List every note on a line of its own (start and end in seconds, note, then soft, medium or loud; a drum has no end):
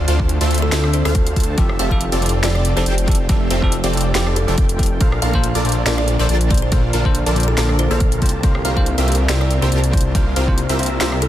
0.00 1.54 D3 medium
0.00 1.54 C4 medium
0.00 1.54 F4 medium
0.08 0.39 D2 loud
0.08 0.38 D4 medium
0.08 0.38 F4 medium
0.08 0.38 A4 medium
0.08 0.38 C5 medium
0.08 0.38 F5 medium
0.08 closed hi-hat medium
0.20 kick medium
0.29 closed hi-hat medium
0.41 0.70 D2 loud
0.41 0.70 D4 medium
0.41 0.70 F4 medium
0.41 0.70 A4 medium
0.41 0.70 C5 medium
0.41 0.70 E5 loud
0.41 closed hi-hat medium
0.51 closed hi-hat medium
0.54 closed hi-hat medium
0.58 closed hi-hat medium
0.62 0.79 A4 loud
0.72 1.03 D2 loud
0.72 1.02 D4 loud
0.72 1.02 F4 medium
0.72 1.02 A4 medium
0.72 1.02 C5 medium
0.72 1.02 E5 loud
0.72 snare loud
0.72 closed hi-hat medium
0.84 cross-stick medium
0.93 1.03 C5 medium
0.93 closed hi-hat medium
1.05 1.35 D2 loud
1.05 1.34 D4 loud
1.05 1.34 F4 medium
1.05 1.34 A4 medium
1.05 1.37 A4 medium
1.05 1.34 C5 medium
1.05 1.34 F5 loud
1.05 cross-stick medium
1.15 kick loud
1.15 closed hi-hat medium
1.27 closed hi-hat medium
1.36 1.56 D2 loud
1.36 1.55 D4 medium
1.36 1.55 F4 medium
1.36 1.56 A4 medium
1.36 1.55 C5 medium
1.36 1.55 A5 medium
1.36 kick medium
1.36 closed hi-hat medium
1.40 closed hi-hat medium
1.44 closed hi-hat medium
1.57 1.77 F1 loud
1.57 1.67 F3 medium
1.57 4.97 F3 medium
1.57 4.97 A3 medium
1.57 1.67 C4 medium
1.57 1.77 C4 medium
1.57 1.67 E4 medium
1.57 1.77 F4 medium
1.57 1.77 G4 medium
1.57 4.97 G4 medium
1.57 1.67 G4 medium
1.57 1.77 A4 medium
1.57 1.68 A4 medium
1.57 1.77 E5 medium
1.57 kick loud
1.57 closed hi-hat medium
1.69 cross-stick medium
1.79 2.10 F1 loud
1.79 2.10 C4 medium
1.79 2.10 F4 medium
1.79 2.10 G4 medium
1.79 2.10 A4 medium
1.79 2.10 E5 medium
1.79 1.87 F5 medium
1.79 closed hi-hat medium
1.90 2.03 F3 medium
1.90 2.03 C4 medium
1.90 2.04 E4 medium
1.90 2.04 G4 medium
1.90 2.04 A4 loud
1.90 1.97 F5 medium
1.90 kick medium
2.01 closed hi-hat medium
2.12 2.42 F1 loud
2.12 2.41 C4 medium
2.12 2.41 F4 medium
2.12 2.41 G4 medium
2.12 2.41 A4 medium
2.12 2.41 D5 loud
2.12 closed hi-hat medium
2.21 2.31 F3 medium
2.21 2.31 C4 medium
2.21 2.31 E4 medium
2.21 2.32 G4 medium
2.21 2.32 A4 medium
2.21 closed hi-hat medium
2.26 closed hi-hat medium
2.29 closed hi-hat medium
2.43 2.74 F1 loud
2.43 2.52 F3 medium
2.43 2.53 C4 medium
2.43 2.74 C4 loud
2.43 2.53 E4 medium
2.43 2.74 F4 medium
2.43 2.74 G4 medium
2.43 2.53 G4 medium
2.43 2.74 A4 medium
2.43 2.53 A4 medium
2.43 2.74 D5 loud
2.43 2.51 D5 medium
2.43 snare loud
2.43 closed hi-hat medium
2.55 2.62 D5 medium
2.55 cross-stick medium
2.65 closed hi-hat medium
2.76 2.84 F1 loud
2.76 2.84 F3 medium
2.76 2.84 C4 medium
2.76 2.85 E4 medium
2.76 2.84 F4 medium
2.76 2.84 G4 medium
2.76 2.85 G4 medium
2.76 2.84 A4 medium
2.76 2.85 A4 medium
2.76 2.93 C5 loud
2.76 2.84 D5 medium
2.86 3.27 F1 loud
2.86 3.27 C4 medium
2.86 3.27 F4 medium
2.86 3.27 G4 medium
2.86 3.27 A4 medium
2.86 3.27 G5 loud
2.86 closed hi-hat medium
2.98 closed hi-hat medium
3.07 3.17 F3 medium
3.07 3.17 C4 medium
3.07 3.17 E4 medium
3.07 3.17 G4 medium
3.07 3.18 A4 medium
3.07 kick loud
3.07 closed hi-hat medium
3.12 closed hi-hat medium
3.15 closed hi-hat medium
3.29 3.49 F1 loud
3.29 3.38 F3 medium
3.29 3.38 C4 medium
3.29 3.48 C4 medium
3.29 3.39 E4 medium
3.29 3.48 F4 medium
3.29 3.48 G4 medium
3.29 3.39 G4 medium
3.29 3.48 A4 medium
3.29 3.39 A4 medium
3.29 3.48 E5 medium
3.29 kick loud
3.29 closed hi-hat medium
3.50 3.81 F1 medium
3.50 3.81 C4 medium
3.50 3.81 F4 medium
3.50 3.81 G4 medium
3.50 3.81 A4 medium
3.50 3.68 C5 loud
3.50 3.81 E5 medium
3.50 closed hi-hat medium
3.61 3.75 F3 medium
3.61 3.75 C4 medium
3.61 3.75 E4 medium
3.61 3.75 G4 medium
3.61 3.76 A4 loud
3.61 kick medium
3.72 closed hi-hat medium
3.84 4.13 F1 loud
3.84 4.13 C4 medium
3.84 4.13 F4 medium
3.84 4.13 G4 medium
3.84 4.13 A4 medium
3.84 4.13 D5 loud
3.84 closed hi-hat medium
3.93 4.02 F3 medium
3.93 4.03 C4 medium
3.93 4.03 E4 medium
3.93 4.03 G4 medium
3.93 4.03 A4 medium
3.93 closed hi-hat medium
3.97 closed hi-hat medium
4.01 closed hi-hat medium
4.14 4.46 F1 loud
4.14 4.24 F3 medium
4.14 4.24 C4 medium
4.14 4.45 C4 loud
4.14 4.24 E4 medium
4.14 4.45 F4 medium
4.14 4.45 G4 medium
4.14 4.24 G4 medium
4.14 4.45 A4 medium
4.14 4.25 A4 medium
4.14 4.45 D5 loud
4.14 snare loud
4.14 closed hi-hat medium
4.27 cross-stick medium
4.36 4.97 A4 medium
4.36 closed hi-hat medium
4.47 4.56 F1 loud
4.47 4.55 F3 medium
4.47 4.56 C4 medium
4.47 4.55 C4 medium
4.47 4.56 E4 medium
4.47 4.55 F4 medium
4.47 4.55 G4 medium
4.47 4.56 G4 medium
4.47 4.55 A4 medium
4.47 4.56 A4 medium
4.47 4.55 D5 medium
4.58 4.99 F1 loud
4.58 4.98 C4 loud
4.58 kick loud
4.58 closed hi-hat medium
4.69 closed hi-hat medium
4.78 4.88 F3 medium
4.78 4.88 C4 medium
4.78 4.89 E4 medium
4.78 4.89 G4 medium
4.78 4.89 A4 medium
4.78 kick medium
4.78 closed hi-hat medium
4.83 closed hi-hat medium
4.86 closed hi-hat medium
5.00 5.20 A#1 loud
5.00 5.09 A#2 medium
5.00 8.19 D3 medium
5.00 5.10 A#3 medium
5.00 11.28 A#3 medium
5.00 5.10 D4 medium
5.00 5.20 D4 medium
5.00 5.20 F4 medium
5.00 5.20 A4 medium
5.00 5.10 A4 medium
5.00 5.20 A#4 medium
5.00 5.10 C5 medium
5.00 5.20 F5 medium
5.00 8.19 A5 medium
5.00 kick loud
5.00 closed hi-hat medium
5.12 cross-stick medium
5.22 5.53 A#1 loud
5.22 5.52 D4 medium
5.22 5.52 F4 medium
5.22 5.52 A4 medium
5.22 5.52 A#4 medium
5.22 5.30 F5 medium
5.22 5.52 F5 medium
5.22 closed hi-hat medium
5.33 5.46 A#2 medium
5.33 5.46 A#3 medium
5.33 5.47 D4 medium
5.33 5.47 A4 medium
5.33 5.47 C5 loud
5.33 5.40 F5 medium
5.33 kick medium
5.44 closed hi-hat medium
5.55 5.85 A#1 loud
5.55 5.84 D4 medium
5.55 5.84 F4 medium
5.55 5.84 A4 medium
5.55 5.84 A#4 medium
5.55 5.84 D5 loud
5.55 closed hi-hat medium
5.64 5.74 A#2 medium
5.64 5.74 A#3 medium
5.64 5.74 D4 medium
5.64 5.74 A4 medium
5.64 5.75 C5 medium
5.64 closed hi-hat soft
5.69 closed hi-hat medium
5.72 closed hi-hat medium
5.85 6.17 A#1 loud
5.85 5.95 A#2 medium
5.85 5.95 A#3 medium
5.85 6.17 D4 medium
5.85 5.96 D4 medium
5.85 6.17 F4 medium
5.85 6.17 A4 medium
5.85 5.96 A4 medium
5.85 6.17 A#4 medium
5.85 5.96 C5 medium
5.85 6.17 D5 loud
5.85 5.94 D5 medium
5.85 snare loud
5.85 closed hi-hat medium
5.98 6.04 D5 medium
5.98 cross-stick medium
6.08 closed hi-hat medium
6.19 6.27 A#1 loud
6.19 6.27 A#2 medium
6.19 6.27 A#3 medium
6.19 6.27 D4 medium
6.19 6.27 F4 medium
6.19 6.27 A4 medium
6.19 6.27 A#4 medium
6.19 6.28 C5 loud
6.19 6.27 D5 medium
6.29 6.70 A#1 loud
6.29 6.70 D4 medium
6.29 6.70 F4 medium
6.29 6.70 A4 medium
6.29 6.70 A#4 medium
6.29 6.70 A5 loud
6.29 closed hi-hat medium
6.41 closed hi-hat medium
6.50 6.59 A#2 medium
6.50 6.60 A#3 medium
6.50 6.60 D4 medium
6.50 6.60 A4 medium
6.50 6.60 C5 medium
6.50 6.60 D5 medium
6.50 kick loud
6.50 closed hi-hat soft
6.54 closed hi-hat medium
6.58 closed hi-hat medium
6.62 6.79 C5 loud
6.71 6.92 A#1 loud
6.71 6.81 A#2 medium
6.71 6.81 A#3 medium
6.71 6.91 D4 medium
6.71 6.81 D4 medium
6.71 6.91 F4 medium
6.71 6.91 A4 medium
6.71 6.82 A4 medium
6.71 6.91 A#4 medium
6.71 6.82 C5 medium
6.71 6.91 F5 medium
6.71 kick loud
6.71 closed hi-hat medium
6.93 7.24 A#1 loud
6.93 7.24 D4 medium
6.93 7.24 F4 medium
6.93 7.24 A4 medium
6.93 7.24 A#4 medium
6.93 7.24 F5 medium
6.93 closed hi-hat medium
7.04 7.18 A#2 medium
7.04 7.18 A#3 medium
7.04 7.18 D4 medium
7.04 7.18 A4 medium
7.04 7.18 C5 loud
7.04 kick medium
7.15 closed hi-hat medium
7.26 7.56 A#1 loud
7.26 7.55 D4 medium
7.26 7.55 F4 medium
7.26 7.55 A4 medium
7.26 7.55 A#4 medium
7.26 7.55 D5 loud
7.26 closed hi-hat medium
7.35 7.45 A#2 medium
7.35 7.45 A#3 medium
7.35 7.46 D4 medium
7.35 7.46 A4 medium
7.35 7.46 C5 medium
7.35 closed hi-hat medium
7.40 closed hi-hat medium
7.43 closed hi-hat medium
7.48 7.64 A4 medium
7.57 7.89 A#1 loud
7.57 7.67 A#2 medium
7.57 7.67 A#3 medium
7.57 7.67 D4 medium
7.57 7.88 D4 loud
7.57 7.88 F4 medium
7.57 7.88 A4 medium
7.57 7.67 A4 medium
7.57 7.88 A#4 medium
7.57 7.68 C5 medium
7.57 7.88 D5 loud
7.57 snare loud
7.57 closed hi-hat medium
7.69 cross-stick medium
7.79 7.89 C5 loud
7.79 closed hi-hat medium
7.90 8.24 A#1 loud
7.90 7.98 A#2 medium
7.90 7.98 A#3 medium
7.90 8.20 D4 loud
7.90 7.99 D4 medium
7.90 8.20 F4 medium
7.90 8.20 A4 medium
7.90 8.22 A4 loud
7.90 7.99 A4 medium
7.90 8.20 A#4 medium
7.90 7.99 C5 medium
7.90 8.20 F5 loud
8.00 kick loud
8.00 closed hi-hat medium
8.12 closed hi-hat medium
8.21 8.42 C2 loud
8.21 8.31 C3 medium
8.21 11.28 C3 medium
8.21 8.31 A#3 medium
8.21 8.41 C4 medium
8.21 8.31 D4 medium
8.21 8.41 F4 medium
8.21 11.28 F4 medium
8.21 8.32 F4 medium
8.21 8.41 G4 medium
8.21 8.41 A#4 medium
8.21 8.32 C5 medium
8.21 8.41 A5 medium
8.21 kick medium
8.21 closed hi-hat soft
8.26 closed hi-hat medium
8.29 closed hi-hat medium
8.43 8.63 C2 loud
8.43 8.52 C3 medium
8.43 8.53 A#3 medium
8.43 8.63 C4 medium
8.43 8.53 D4 medium
8.43 8.63 F4 medium
8.43 8.53 F4 medium
8.43 8.63 G4 medium
8.43 8.63 A#4 medium
8.43 8.53 C5 medium
8.43 8.63 F5 loud
8.43 kick loud
8.43 closed hi-hat medium
8.55 cross-stick medium
8.65 8.96 C2 medium
8.65 8.95 C4 medium
8.65 8.95 F4 medium
8.65 8.95 G4 medium
8.65 8.95 A#4 medium
8.65 8.95 F5 medium
8.65 8.73 F5 medium
8.65 closed hi-hat medium
8.76 8.89 C3 medium
8.76 8.89 A#3 medium
8.76 8.89 D4 medium
8.76 8.90 F4 medium
8.76 8.90 C5 loud
8.76 8.83 F5 medium
8.76 kick medium
8.86 closed hi-hat medium
8.98 9.27 C2 loud
8.98 9.27 C4 medium
8.98 9.27 F4 medium
8.98 9.27 G4 medium
8.98 9.27 A#4 medium
8.98 9.27 E5 loud
8.98 closed hi-hat medium
9.07 9.16 C3 medium
9.07 9.17 A#3 medium
9.07 9.17 D4 medium
9.07 9.17 F4 medium
9.07 9.17 C5 medium
9.07 closed hi-hat medium
9.12 closed hi-hat medium
9.15 closed hi-hat medium
9.28 9.60 C2 loud
9.28 9.38 C3 medium
9.28 9.38 A#3 medium
9.28 9.59 C4 medium
9.28 9.38 D4 medium
9.28 9.59 F4 medium
9.28 9.39 F4 medium
9.28 9.59 G4 medium
9.28 9.59 A#4 medium
9.28 9.39 C5 medium
9.28 9.37 D5 medium
9.28 9.59 E5 loud
9.28 snare loud
9.28 closed hi-hat medium
9.41 9.47 D5 medium
9.41 cross-stick medium
9.51 closed hi-hat medium
9.61 9.70 C2 loud
9.61 9.70 C3 medium
9.61 9.70 A#3 medium
9.61 9.70 C4 medium
9.61 9.70 D4 medium
9.61 9.70 F4 medium
9.61 9.70 G4 medium
9.61 9.70 A#4 medium
9.61 9.79 C5 loud
9.61 9.70 C5 medium
9.61 9.70 E5 medium
9.72 10.13 C2 loud
9.72 10.13 C4 loud
9.72 10.13 F4 medium
9.72 10.13 G4 medium
9.72 10.13 A#4 medium
9.72 10.13 A5 loud
9.72 closed hi-hat medium
9.84 closed hi-hat medium
9.93 10.02 C3 medium
9.93 10.02 A#3 medium
9.93 10.03 D4 medium
9.93 10.03 F4 medium
9.93 10.03 C5 medium
9.93 kick loud
9.93 closed hi-hat soft
9.97 closed hi-hat medium
10.01 closed hi-hat medium
10.14 10.34 C2 loud
10.14 10.24 C3 medium
10.14 10.24 A#3 medium
10.14 10.34 C4 medium
10.14 10.24 D4 medium
10.14 10.34 F4 medium
10.14 10.24 F4 medium
10.14 10.34 G4 medium
10.14 10.34 A#4 medium
10.14 10.25 C5 medium
10.14 10.34 F5 medium
10.14 kick loud
10.14 closed hi-hat medium
10.36 10.67 C2 loud
10.36 10.67 C4 medium
10.36 10.67 F4 medium
10.36 10.67 G4 medium
10.36 10.67 A#4 medium
10.36 10.54 C5 loud
10.36 10.67 F5 medium
10.36 closed hi-hat medium
10.47 10.60 C3 medium
10.47 10.61 A#3 medium
10.47 10.61 D4 medium
10.47 10.61 F4 medium
10.47 10.61 C5 loud
10.47 kick medium
10.58 closed hi-hat medium
10.69 10.99 C2 loud
10.69 10.98 C4 medium
10.69 10.98 F4 medium
10.69 10.98 G4 medium
10.69 10.98 A#4 medium
10.69 10.98 E5 loud
10.69 closed hi-hat medium
10.78 10.88 C3 medium
10.78 10.88 A#3 medium
10.78 10.88 D4 medium
10.78 10.89 F4 medium
10.78 10.89 C5 medium
10.78 closed hi-hat soft
10.83 closed hi-hat medium
10.86 closed hi-hat medium
11.00 11.28 C2 loud
11.00 11.09 C3 medium
11.00 11.10 A#3 medium
11.00 11.28 C4 loud
11.00 11.10 D4 medium
11.00 11.28 F4 medium
11.00 11.10 F4 medium
11.00 11.28 G4 medium
11.00 11.28 A#4 medium
11.00 11.10 C5 medium
11.00 11.28 E5 loud
11.00 snare loud
11.00 closed hi-hat medium
11.12 cross-stick medium
11.22 11.28 A4 loud
11.22 closed hi-hat medium